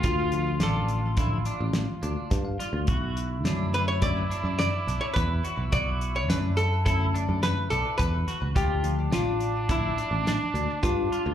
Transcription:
<<
  \new Staff \with { instrumentName = "Hollow-body jazz guitar" } { \time 5/4 \key b \minor \tempo 4 = 106 f'4 a'4 r2. | r4. b'16 cis''16 d''4 d''8. cis''16 b'4 | d''8. cis''16 b'8 a'8 a'4 b'8 a'8 b'8. r16 | g'4 f'4 e'4 d'4 f'4 | }
  \new Staff \with { instrumentName = "Trombone" } { \time 5/4 \key b \minor f'1~ f'8 r8 | e'1~ e'4~ | e'1~ e'8 r8 | d'1~ d'4 | }
  \new Staff \with { instrumentName = "Clean electric guitar" } { \time 5/4 \key b \minor f'4 d'4 e'8 d'4 d'4 f'8 | fis'4 d'4 e'8 d'4 d'4 fis'8 | fis'4 d'4 e'8 d'4 d'4 fis'8 | f'4 d'4 e'8 d'4 d'4 f'8 | }
  \new Staff \with { instrumentName = "Tine electric piano" } { \time 5/4 \key b \minor r8 <d f a d'>4. <d f a d'>8 r4. a''16 f''16 d''8 | r4 <d fis a cis'>4 <d fis a cis'>8 r2 r8 | r4 <d fis a cis'>8 r8 <d fis a cis'>4. r4. | r8 <d f a d'>8 r4 <d f a d'>8 r2 r8 | }
  \new Staff \with { instrumentName = "Picked electric bass" } { \clef bass \time 5/4 \key b \minor d,4 a,,4.~ a,,16 a,,8 r16 d,16 r16 g,8 r16 d,16 | b,,4 fis,4.~ fis,16 fis,8 r16 b,,16 r16 e,8 r16 b,,16 | b,,4 fis,4.~ fis,16 fis,8 r16 b,,16 r16 e,8 r16 cis,16 | d,4 a,,4.~ a,,16 a,,8 r16 d,16 r16 g,8 r16 d,16 | }
  \new DrumStaff \with { instrumentName = "Drums" } \drummode { \time 5/4 <hh bd>8 hh8 <hh sn>8 hh8 <hh bd sn>8 hh8 <hh sn>8 hh8 <hh bd sn>8 <hh sn>8 | <hh bd>8 hh8 <hh sn>8 <hh sn>8 <hh bd sn>8 hh8 <hh sn>8 <hh sn>8 <hh bd>8 hh8 | <hh bd>8 hh8 <hh sn>8 hh8 <hh bd>8 hh8 <hh sn>8 hh8 <hh bd>8 <hh sn>8 | <hh bd>8 hh8 <hh sn>8 hh8 <hh bd>8 hh8 <hh sn>8 hh8 <hh bd>8 hh8 | }
>>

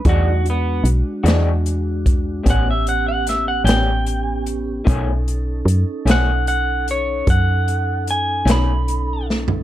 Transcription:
<<
  \new Staff \with { instrumentName = "Clean electric guitar" } { \time 12/8 \key b \dorian \tempo 4. = 50 fis'8 b8 r2 fis''16 e''16 fis''16 fis''16 e''16 fis''16 g''4 r8 | r4. fis''8 fis''8 cis''8 fis''4 gis''8 b''4 r8 | }
  \new Staff \with { instrumentName = "Tonewheel organ" } { \time 12/8 \key b \dorian <g a dis'>8 <gis d' fis'>2~ <gis d' fis'>8 <b cis' g'>2. | <cis' dis' a'>1. | }
  \new Staff \with { instrumentName = "Clean electric guitar" } { \clef bass \time 12/8 \key b \dorian <e gis d' fis'>8 r4 <e gis d' fis'>8 r4 <a, g b cis'>8 r4 <a, g b cis'>8 r4 | <b, dis a cis'>8 r4 <b, dis a cis'>8 r2 r8 <b, dis a cis'>8 r4 | }
  \new Staff \with { instrumentName = "FM bass" } { \clef bass \time 12/8 \key b \dorian e,4 b,,16 r16 e,4. a,,4. a,,4. | b,,4 fis,16 r16 b,,4. fis,4. b,,4. | }
  \new DrumStaff \with { instrumentName = "Drums" } \drummode { \time 12/8 <hh bd>8 hh8 hh8 <hh sn>8 hh8 <hh bd>8 <hh bd>8 hh8 <hh sn>8 <hh sn>8 hh8 hh8 | <hh bd>8 hh8 hh8 <hh sn>8 hh8 hh8 <hh bd>8 hh8 hh8 <hh sn>8 hh8 sn16 tomfh16 | }
>>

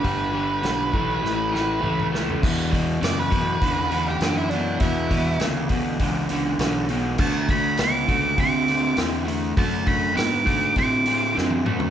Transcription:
<<
  \new Staff \with { instrumentName = "Lead electric guitar" } { \time 4/4 \key d \lydian \tempo 4 = 101 b'2.~ b'8 r8 | r4 d''16 b'4. g'8 e'16 d'8 | e'4 r2. | a''8 b''8 d'''4 d'''4 r4 |
a''8 b''8 d'''4 d'''4 r4 | }
  \new Staff \with { instrumentName = "Overdriven electric guitar" } { \clef bass \time 4/4 \key d \lydian <g, d g>8 <g, d g>8 <g, d g>8 <a, e a>8 <a, e a>8 <a, e a>8 <a, e a>8 <a, e a>8 | <e, b,>8 <e, b,>8 <e, cis>8 <e, b,>8 <e, d>8 <e, d>8 <e, d>8 <e, b,>8 | <e, b,>8 <e, b,>8 <e, cis>8 <e, b,>8 <e, d>8 <e, d>8 <e, d>8 <e, b,>8 | <d a>8 <d a>8 <d b>8 <d a>8 <d c'>8 <d c'>8 <d c'>8 <d a>8 |
<d a>8 <d a>8 <d b>8 <d a>8 <d c'>8 <d c'>8 <d c'>8 <d a>8 | }
  \new Staff \with { instrumentName = "Fingered electric bass" } { \clef bass \time 4/4 \key d \lydian g,,4 b,,4 a,,4 cis,4 | e,4 fis,4 e,4 fis,4 | e,4 d,4 cis,4 b,,4 | d,4 cis,4 d,4 e,4 |
fis,4 gis,4 a,4 fis,4 | }
  \new DrumStaff \with { instrumentName = "Drums" } \drummode { \time 4/4 <hho bd>4 <hho sn>8 bd8 sn8 sn8 toml16 toml16 sn16 tomfh16 | <cymc bd>8 <hho bd>8 <hho sn>8 <hho bd>8 <hho bd>8 hho8 <hho sn>8 hho8 | <hho bd>8 <hho bd>8 <hho sn>8 <hho bd>8 <hho bd>8 hho8 <hho sn>8 hho8 | <cymc bd>8 <hho bd>8 <hho sn>8 <hho bd>8 <hho bd>8 hho8 <hho sn>8 hho8 |
<hho bd>8 <hho bd>8 <hho sn>8 <hho bd>8 <hho bd>8 hho8 sn16 tommh16 toml16 tomfh16 | }
>>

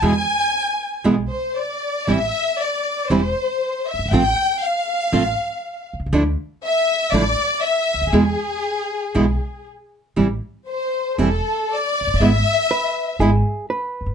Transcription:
<<
  \new Staff \with { instrumentName = "Violin section" } { \time 4/4 \key a \minor \tempo 4 = 119 gis''2 r8 c''8 d''4 | e''4 d''4 c''4. e''8 | g''4 f''2~ f''8 r8 | r4 e''4 d''4 e''4 |
gis'2. r4 | r4 c''4 a'4 d''4 | e''2 r2 | }
  \new Staff \with { instrumentName = "Hollow-body jazz guitar" } { \time 4/4 \key a \minor r1 | r1 | r1 | r1 |
r1 | r1 | r4 b'4 gis'4 b'4 | }
  \new Staff \with { instrumentName = "Nylon-string guitar" } { \time 4/4 \key a \minor <b, e gis b e'>8 r4. <b, e gis b e'>8 r4. | <e g c' e'>8 r4. <e g c' e'>8 r4. | <f a c' f'>8 r4. <f a c' f'>8 r4. | <d f a d' e'>8 r4. <d f a d' e'>8 r4. |
<b, e gis b e'>8 r4. <b, e gis b e'>8 r4. | <e g c' e'>8 r4. <e g c' e'>8 r4. | <gis b e'>8 r4. <gis b e'>8 r4. | }
  \new Staff \with { instrumentName = "Upright bass" } { \clef bass \time 4/4 \key a \minor e,16. r4. r32 b,,16. r4. r32 | a,,16. r4. r32 e,,16. r4 r16 fis,,32 g,,32 gis,,32 | a,,16. r4. r32 a,,16. r4 r16 b,,32 c,32 cis,32 | d,16. r4. r32 a,,16. r4 r16 cis,32 d,32 dis,32 |
e,16. r4. r32 b,,16. r4. r32 | a,,16. r4. r32 e,,16. r4 r16 f,,32 fis,,32 g,,32 | gis,,16. r4. r32 gis,,16. r4 r16 fis,,32 g,,32 r32 | }
>>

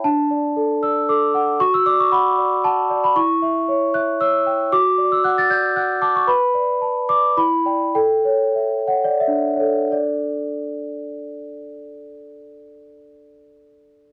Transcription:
\new Staff \with { instrumentName = "Celesta" } { \time 3/4 \key d \major \tempo 4 = 114 << { a''4. e'''8 d'''4 | cis'''16 e'''16 d'''16 cis'''16 b''4 a''8. b''16 | cis'''4. fis'''8 e'''4 | d'''8. e'''16 fis'''16 a'''16 g'''8 fis'''8 d'''16 cis'''16 |
b''4. d'''8 b''4 | g''4. fis''16 d''16 e''4 | <d' a' d''>2.~ | <d' a' d''>2. | } \\ { d'8 d''8 a'8 d''8 a'8 fis''8 | fis'8 d''8 fis''8 d''8 fis''8 d''8 | e'8 e''8 cis''8 e''8 cis''8 g''8 | fis'8 d''8 fis''8 d''8 fis''8 a''8 |
b'8 d''8 a''8 d''8 e'8 <d'' g''>8 | a'8 cis''8 e''8 cis''4 cis''8 | r2. | r2. | } >> }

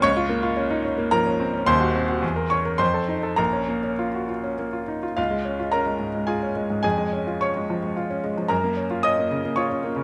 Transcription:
\new Staff \with { instrumentName = "Grand piano" } { \time 3/4 \key bes \minor \tempo 4 = 109 << { <des'' des'''>2 <bes' bes''>4 | <c'' c'''>4. <des'' des'''>8 <c'' c'''>4 | <bes' bes''>2 r4 | \key des \major <f' f''>4 <bes' bes''>4 <aes' aes''>4 |
<aes' aes''>4 <des'' des'''>2 | <bes' bes''>4 <ees'' ees'''>4 <des'' des'''>4 | } \\ { des,16 f'16 bes16 f'16 des'16 ees'16 des'16 bes16 f16 des'16 c'16 des'16 | <ees,, ees,>16 ges'16 c'16 ges'16 e,16 bes'16 des'16 bes'16 f,16 a'16 ees'16 a'16 | bes,,16 des'16 bes16 des'16 f'16 ges'16 f'16 des'16 bes16 f'16 ees'16 f'16 | des,16 aes16 des'16 f'16 des'16 aes16 aes,16 aes16 f'16 des'16 aes16 aes,16 |
f,16 aes16 des'16 f'16 des'16 aes16 f16 aes16 f'16 des'16 aes16 f16 | ges,16 bes16 des'16 f'16 des'16 bes16 des16 bes16 f'16 des'16 bes16 des16 | } >> }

